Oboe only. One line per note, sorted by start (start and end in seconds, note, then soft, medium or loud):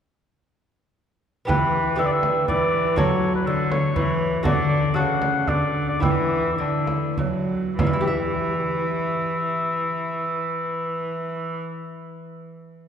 1.49 1.95 B4 medium
1.99 2.07 E5 medium
2.06 2.14 D5 medium
2.12 2.47 E5 medium
2.48 2.96 D5 medium
2.97 3.34 C#5 medium
3.35 3.49 B4 medium
3.47 3.73 A4 medium
3.71 4.21 C#5 medium
4.45 4.97 D5 medium
4.95 5.49 F#5 medium
5.48 5.88 D5 medium
5.88 6.02 D5 medium
6.02 7.14 E5 medium
7.79 11.59 E5 medium